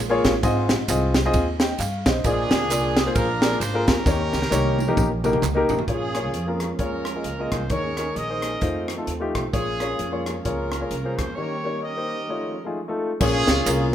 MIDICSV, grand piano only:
0, 0, Header, 1, 2, 480
1, 0, Start_track
1, 0, Tempo, 454201
1, 451, Time_signature, 4, 2, 24, 8
1, 7171, Tempo, 458365
1, 14670, End_track
2, 0, Start_track
2, 0, Title_t, "Grand piano"
2, 0, Program_c, 0, 0
2, 101, Note_on_c, 0, 58, 97
2, 107, Note_on_c, 0, 65, 88
2, 109, Note_on_c, 0, 68, 81
2, 117, Note_on_c, 0, 73, 108
2, 330, Note_off_c, 0, 58, 0
2, 334, Note_off_c, 0, 65, 0
2, 335, Note_off_c, 0, 68, 0
2, 339, Note_off_c, 0, 73, 0
2, 455, Note_on_c, 0, 65, 73
2, 456, Note_on_c, 0, 60, 78
2, 457, Note_on_c, 0, 68, 78
2, 459, Note_on_c, 0, 44, 74
2, 469, Note_on_c, 0, 75, 91
2, 781, Note_off_c, 0, 65, 0
2, 782, Note_off_c, 0, 60, 0
2, 782, Note_off_c, 0, 68, 0
2, 788, Note_off_c, 0, 75, 0
2, 939, Note_on_c, 0, 60, 83
2, 943, Note_on_c, 0, 65, 79
2, 946, Note_on_c, 0, 68, 71
2, 952, Note_on_c, 0, 75, 82
2, 1180, Note_off_c, 0, 44, 0
2, 1196, Note_off_c, 0, 60, 0
2, 1198, Note_off_c, 0, 65, 0
2, 1200, Note_off_c, 0, 68, 0
2, 1203, Note_off_c, 0, 75, 0
2, 1323, Note_on_c, 0, 60, 82
2, 1326, Note_on_c, 0, 65, 79
2, 1328, Note_on_c, 0, 68, 84
2, 1335, Note_on_c, 0, 75, 97
2, 1533, Note_off_c, 0, 60, 0
2, 1535, Note_off_c, 0, 65, 0
2, 1536, Note_off_c, 0, 68, 0
2, 1539, Note_off_c, 0, 75, 0
2, 1708, Note_on_c, 0, 79, 63
2, 1713, Note_on_c, 0, 75, 52
2, 1888, Note_off_c, 0, 79, 0
2, 1890, Note_off_c, 0, 75, 0
2, 1898, Note_on_c, 0, 77, 69
2, 2167, Note_off_c, 0, 77, 0
2, 2190, Note_on_c, 0, 75, 68
2, 2197, Note_on_c, 0, 72, 59
2, 2371, Note_on_c, 0, 58, 69
2, 2375, Note_on_c, 0, 65, 67
2, 2380, Note_on_c, 0, 46, 66
2, 2382, Note_on_c, 0, 68, 64
2, 2386, Note_on_c, 0, 74, 83
2, 2640, Note_off_c, 0, 75, 0
2, 2644, Note_off_c, 0, 72, 0
2, 2699, Note_off_c, 0, 58, 0
2, 2701, Note_off_c, 0, 65, 0
2, 2704, Note_off_c, 0, 68, 0
2, 2706, Note_off_c, 0, 74, 0
2, 2853, Note_on_c, 0, 58, 70
2, 2859, Note_on_c, 0, 65, 57
2, 2865, Note_on_c, 0, 68, 64
2, 2873, Note_on_c, 0, 74, 80
2, 3099, Note_off_c, 0, 46, 0
2, 3112, Note_off_c, 0, 58, 0
2, 3116, Note_off_c, 0, 65, 0
2, 3118, Note_off_c, 0, 68, 0
2, 3122, Note_off_c, 0, 74, 0
2, 3230, Note_on_c, 0, 58, 66
2, 3239, Note_on_c, 0, 65, 68
2, 3244, Note_on_c, 0, 68, 64
2, 3247, Note_on_c, 0, 72, 79
2, 3446, Note_off_c, 0, 58, 0
2, 3451, Note_off_c, 0, 65, 0
2, 3453, Note_off_c, 0, 68, 0
2, 3455, Note_off_c, 0, 72, 0
2, 3616, Note_on_c, 0, 58, 75
2, 3619, Note_on_c, 0, 65, 62
2, 3624, Note_on_c, 0, 68, 69
2, 3632, Note_on_c, 0, 74, 75
2, 3792, Note_off_c, 0, 58, 0
2, 3794, Note_off_c, 0, 65, 0
2, 3796, Note_off_c, 0, 68, 0
2, 3800, Note_off_c, 0, 74, 0
2, 3949, Note_on_c, 0, 58, 77
2, 3956, Note_on_c, 0, 65, 71
2, 3962, Note_on_c, 0, 68, 76
2, 3965, Note_on_c, 0, 70, 94
2, 4173, Note_off_c, 0, 58, 0
2, 4177, Note_off_c, 0, 65, 0
2, 4180, Note_off_c, 0, 68, 0
2, 4182, Note_off_c, 0, 70, 0
2, 4290, Note_on_c, 0, 58, 73
2, 4296, Note_on_c, 0, 51, 60
2, 4296, Note_on_c, 0, 63, 67
2, 4300, Note_on_c, 0, 67, 63
2, 4306, Note_on_c, 0, 73, 80
2, 4617, Note_off_c, 0, 58, 0
2, 4620, Note_off_c, 0, 63, 0
2, 4622, Note_off_c, 0, 67, 0
2, 4625, Note_off_c, 0, 73, 0
2, 4761, Note_on_c, 0, 58, 90
2, 4761, Note_on_c, 0, 63, 69
2, 4766, Note_on_c, 0, 67, 75
2, 4776, Note_on_c, 0, 73, 90
2, 5017, Note_off_c, 0, 51, 0
2, 5026, Note_off_c, 0, 58, 0
2, 5026, Note_off_c, 0, 63, 0
2, 5028, Note_off_c, 0, 67, 0
2, 5033, Note_off_c, 0, 73, 0
2, 5150, Note_on_c, 0, 58, 83
2, 5161, Note_on_c, 0, 63, 83
2, 5162, Note_on_c, 0, 67, 80
2, 5166, Note_on_c, 0, 70, 93
2, 5365, Note_off_c, 0, 58, 0
2, 5371, Note_off_c, 0, 63, 0
2, 5371, Note_off_c, 0, 67, 0
2, 5373, Note_off_c, 0, 70, 0
2, 5534, Note_on_c, 0, 58, 82
2, 5540, Note_on_c, 0, 63, 75
2, 5547, Note_on_c, 0, 67, 72
2, 5553, Note_on_c, 0, 70, 93
2, 5711, Note_off_c, 0, 58, 0
2, 5714, Note_off_c, 0, 63, 0
2, 5717, Note_off_c, 0, 67, 0
2, 5720, Note_off_c, 0, 70, 0
2, 5862, Note_on_c, 0, 58, 88
2, 5868, Note_on_c, 0, 63, 83
2, 5875, Note_on_c, 0, 67, 85
2, 5882, Note_on_c, 0, 70, 97
2, 6090, Note_off_c, 0, 58, 0
2, 6093, Note_off_c, 0, 63, 0
2, 6097, Note_off_c, 0, 67, 0
2, 6100, Note_off_c, 0, 70, 0
2, 6213, Note_on_c, 0, 65, 55
2, 6215, Note_on_c, 0, 58, 60
2, 6219, Note_on_c, 0, 46, 49
2, 6221, Note_on_c, 0, 68, 55
2, 6226, Note_on_c, 0, 73, 66
2, 6386, Note_off_c, 0, 65, 0
2, 6387, Note_off_c, 0, 58, 0
2, 6390, Note_off_c, 0, 68, 0
2, 6392, Note_off_c, 0, 73, 0
2, 6498, Note_on_c, 0, 65, 57
2, 6499, Note_on_c, 0, 58, 61
2, 6509, Note_on_c, 0, 68, 59
2, 6509, Note_on_c, 0, 73, 71
2, 6675, Note_off_c, 0, 58, 0
2, 6675, Note_off_c, 0, 65, 0
2, 6680, Note_off_c, 0, 68, 0
2, 6680, Note_off_c, 0, 73, 0
2, 6834, Note_on_c, 0, 58, 67
2, 6838, Note_on_c, 0, 65, 61
2, 6845, Note_on_c, 0, 68, 57
2, 6849, Note_on_c, 0, 70, 80
2, 6941, Note_off_c, 0, 46, 0
2, 7058, Note_off_c, 0, 58, 0
2, 7060, Note_off_c, 0, 65, 0
2, 7064, Note_off_c, 0, 68, 0
2, 7066, Note_off_c, 0, 70, 0
2, 7173, Note_on_c, 0, 58, 61
2, 7182, Note_on_c, 0, 65, 59
2, 7184, Note_on_c, 0, 68, 61
2, 7188, Note_on_c, 0, 73, 76
2, 7433, Note_off_c, 0, 58, 0
2, 7437, Note_off_c, 0, 65, 0
2, 7438, Note_off_c, 0, 68, 0
2, 7441, Note_off_c, 0, 73, 0
2, 7552, Note_on_c, 0, 65, 51
2, 7553, Note_on_c, 0, 58, 59
2, 7563, Note_on_c, 0, 68, 56
2, 7567, Note_on_c, 0, 75, 61
2, 7680, Note_off_c, 0, 65, 0
2, 7681, Note_off_c, 0, 58, 0
2, 7686, Note_off_c, 0, 68, 0
2, 7688, Note_off_c, 0, 75, 0
2, 7805, Note_on_c, 0, 58, 62
2, 7806, Note_on_c, 0, 65, 58
2, 7813, Note_on_c, 0, 68, 60
2, 7820, Note_on_c, 0, 75, 78
2, 8022, Note_off_c, 0, 58, 0
2, 8022, Note_off_c, 0, 65, 0
2, 8026, Note_off_c, 0, 68, 0
2, 8029, Note_off_c, 0, 75, 0
2, 8133, Note_on_c, 0, 58, 60
2, 8138, Note_on_c, 0, 63, 60
2, 8142, Note_on_c, 0, 51, 49
2, 8145, Note_on_c, 0, 68, 54
2, 8151, Note_on_c, 0, 73, 66
2, 8305, Note_off_c, 0, 58, 0
2, 8307, Note_off_c, 0, 63, 0
2, 8311, Note_off_c, 0, 68, 0
2, 8314, Note_off_c, 0, 73, 0
2, 8418, Note_on_c, 0, 58, 59
2, 8421, Note_on_c, 0, 63, 56
2, 8427, Note_on_c, 0, 68, 61
2, 8430, Note_on_c, 0, 70, 66
2, 8593, Note_off_c, 0, 58, 0
2, 8594, Note_off_c, 0, 63, 0
2, 8597, Note_off_c, 0, 68, 0
2, 8599, Note_off_c, 0, 70, 0
2, 8748, Note_on_c, 0, 58, 58
2, 8751, Note_on_c, 0, 63, 52
2, 8756, Note_on_c, 0, 68, 55
2, 8762, Note_on_c, 0, 72, 65
2, 8859, Note_off_c, 0, 51, 0
2, 8972, Note_off_c, 0, 58, 0
2, 8974, Note_off_c, 0, 63, 0
2, 8976, Note_off_c, 0, 68, 0
2, 8980, Note_off_c, 0, 72, 0
2, 9078, Note_on_c, 0, 57, 62
2, 9083, Note_on_c, 0, 63, 61
2, 9093, Note_on_c, 0, 65, 65
2, 9095, Note_on_c, 0, 72, 74
2, 9344, Note_off_c, 0, 57, 0
2, 9346, Note_off_c, 0, 63, 0
2, 9351, Note_off_c, 0, 65, 0
2, 9352, Note_off_c, 0, 72, 0
2, 9456, Note_on_c, 0, 57, 64
2, 9465, Note_on_c, 0, 63, 58
2, 9468, Note_on_c, 0, 65, 61
2, 9471, Note_on_c, 0, 69, 78
2, 9591, Note_off_c, 0, 57, 0
2, 9595, Note_off_c, 0, 63, 0
2, 9597, Note_off_c, 0, 65, 0
2, 9598, Note_off_c, 0, 69, 0
2, 9698, Note_on_c, 0, 57, 72
2, 9704, Note_on_c, 0, 63, 72
2, 9705, Note_on_c, 0, 65, 70
2, 9715, Note_on_c, 0, 67, 89
2, 9927, Note_off_c, 0, 57, 0
2, 9930, Note_off_c, 0, 63, 0
2, 9931, Note_off_c, 0, 65, 0
2, 9936, Note_off_c, 0, 67, 0
2, 10037, Note_on_c, 0, 58, 63
2, 10045, Note_on_c, 0, 65, 60
2, 10046, Note_on_c, 0, 46, 54
2, 10051, Note_on_c, 0, 68, 52
2, 10051, Note_on_c, 0, 73, 71
2, 10217, Note_off_c, 0, 58, 0
2, 10221, Note_off_c, 0, 65, 0
2, 10224, Note_off_c, 0, 68, 0
2, 10224, Note_off_c, 0, 73, 0
2, 10331, Note_on_c, 0, 58, 64
2, 10341, Note_on_c, 0, 65, 58
2, 10341, Note_on_c, 0, 68, 59
2, 10346, Note_on_c, 0, 73, 74
2, 10509, Note_off_c, 0, 58, 0
2, 10514, Note_off_c, 0, 65, 0
2, 10514, Note_off_c, 0, 68, 0
2, 10517, Note_off_c, 0, 73, 0
2, 10660, Note_on_c, 0, 58, 66
2, 10663, Note_on_c, 0, 65, 68
2, 10672, Note_on_c, 0, 68, 63
2, 10673, Note_on_c, 0, 73, 76
2, 10773, Note_off_c, 0, 46, 0
2, 10889, Note_off_c, 0, 58, 0
2, 10890, Note_off_c, 0, 65, 0
2, 10895, Note_off_c, 0, 68, 0
2, 10895, Note_off_c, 0, 73, 0
2, 11005, Note_on_c, 0, 58, 65
2, 11007, Note_on_c, 0, 65, 63
2, 11015, Note_on_c, 0, 68, 61
2, 11016, Note_on_c, 0, 73, 76
2, 11269, Note_off_c, 0, 58, 0
2, 11269, Note_off_c, 0, 65, 0
2, 11273, Note_off_c, 0, 68, 0
2, 11274, Note_off_c, 0, 73, 0
2, 11379, Note_on_c, 0, 65, 54
2, 11381, Note_on_c, 0, 58, 53
2, 11385, Note_on_c, 0, 68, 54
2, 11389, Note_on_c, 0, 73, 66
2, 11514, Note_off_c, 0, 65, 0
2, 11515, Note_off_c, 0, 58, 0
2, 11517, Note_off_c, 0, 68, 0
2, 11519, Note_off_c, 0, 73, 0
2, 11630, Note_on_c, 0, 58, 62
2, 11632, Note_on_c, 0, 65, 55
2, 11640, Note_on_c, 0, 68, 59
2, 11643, Note_on_c, 0, 72, 68
2, 11855, Note_off_c, 0, 58, 0
2, 11856, Note_off_c, 0, 65, 0
2, 11860, Note_off_c, 0, 68, 0
2, 11861, Note_off_c, 0, 72, 0
2, 11969, Note_on_c, 0, 58, 61
2, 11971, Note_on_c, 0, 51, 48
2, 11971, Note_on_c, 0, 63, 58
2, 11972, Note_on_c, 0, 67, 53
2, 11982, Note_on_c, 0, 73, 62
2, 12144, Note_off_c, 0, 58, 0
2, 12145, Note_off_c, 0, 63, 0
2, 12146, Note_off_c, 0, 67, 0
2, 12151, Note_off_c, 0, 73, 0
2, 12254, Note_on_c, 0, 58, 62
2, 12262, Note_on_c, 0, 63, 57
2, 12268, Note_on_c, 0, 67, 53
2, 12274, Note_on_c, 0, 73, 72
2, 12432, Note_off_c, 0, 58, 0
2, 12436, Note_off_c, 0, 63, 0
2, 12440, Note_off_c, 0, 67, 0
2, 12443, Note_off_c, 0, 73, 0
2, 12597, Note_on_c, 0, 58, 54
2, 12601, Note_on_c, 0, 63, 51
2, 12606, Note_on_c, 0, 72, 62
2, 12608, Note_on_c, 0, 67, 50
2, 12697, Note_off_c, 0, 51, 0
2, 12819, Note_off_c, 0, 58, 0
2, 12821, Note_off_c, 0, 63, 0
2, 12823, Note_off_c, 0, 72, 0
2, 12824, Note_off_c, 0, 67, 0
2, 12928, Note_on_c, 0, 57, 64
2, 12937, Note_on_c, 0, 63, 56
2, 12944, Note_on_c, 0, 65, 62
2, 12949, Note_on_c, 0, 73, 71
2, 13191, Note_off_c, 0, 57, 0
2, 13196, Note_off_c, 0, 63, 0
2, 13199, Note_off_c, 0, 65, 0
2, 13201, Note_off_c, 0, 73, 0
2, 13311, Note_on_c, 0, 57, 65
2, 13319, Note_on_c, 0, 63, 63
2, 13324, Note_on_c, 0, 65, 66
2, 13330, Note_on_c, 0, 68, 71
2, 13441, Note_off_c, 0, 57, 0
2, 13445, Note_off_c, 0, 63, 0
2, 13448, Note_off_c, 0, 65, 0
2, 13450, Note_off_c, 0, 68, 0
2, 13555, Note_on_c, 0, 57, 78
2, 13556, Note_on_c, 0, 63, 65
2, 13565, Note_on_c, 0, 65, 67
2, 13567, Note_on_c, 0, 69, 81
2, 13778, Note_off_c, 0, 57, 0
2, 13779, Note_off_c, 0, 63, 0
2, 13783, Note_off_c, 0, 65, 0
2, 13784, Note_off_c, 0, 69, 0
2, 13886, Note_on_c, 0, 58, 69
2, 13892, Note_on_c, 0, 61, 68
2, 13894, Note_on_c, 0, 46, 65
2, 13895, Note_on_c, 0, 65, 65
2, 13897, Note_on_c, 0, 68, 71
2, 13905, Note_on_c, 0, 73, 76
2, 14217, Note_off_c, 0, 58, 0
2, 14220, Note_off_c, 0, 61, 0
2, 14222, Note_off_c, 0, 65, 0
2, 14222, Note_off_c, 0, 68, 0
2, 14226, Note_off_c, 0, 73, 0
2, 14371, Note_on_c, 0, 58, 74
2, 14375, Note_on_c, 0, 61, 68
2, 14382, Note_on_c, 0, 65, 67
2, 14387, Note_on_c, 0, 68, 64
2, 14391, Note_on_c, 0, 70, 72
2, 14617, Note_off_c, 0, 46, 0
2, 14632, Note_off_c, 0, 58, 0
2, 14634, Note_off_c, 0, 61, 0
2, 14638, Note_off_c, 0, 65, 0
2, 14640, Note_off_c, 0, 68, 0
2, 14642, Note_off_c, 0, 70, 0
2, 14670, End_track
0, 0, End_of_file